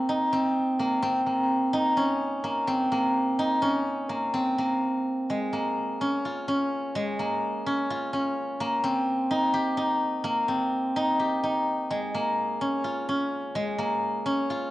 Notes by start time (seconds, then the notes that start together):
Already playing: A#3 C4
0.09 D#4
0.33 C4
0.80 A#3
1.02 C4
1.26 A#3
1.73 D#4
1.97 C#4
2.44 A#3
2.67 C4
2.92 A#3
3.39 D#4
3.62 C#4
4.10 A#3
4.34 C4
4.58 A#3
5.30 G#3
5.53 A#3
6.01 C#4
6.25 F4
6.48 C#4
6.95 G#3
7.19 A#3
7.66 C#4
7.90 F4
8.13 C#4
8.60 A#3
8.84 C4
9.31 D#4
9.54 G4
9.77 D#4
10.24 A#3
10.48 C4
10.96 D#4
11.19 G4
11.44 D#4
11.91 G#3
12.15 A#3
12.61 C#4
12.84 F4
13.09 C#4
13.55 G#3
13.79 A#3
14.26 C#4
14.50 F4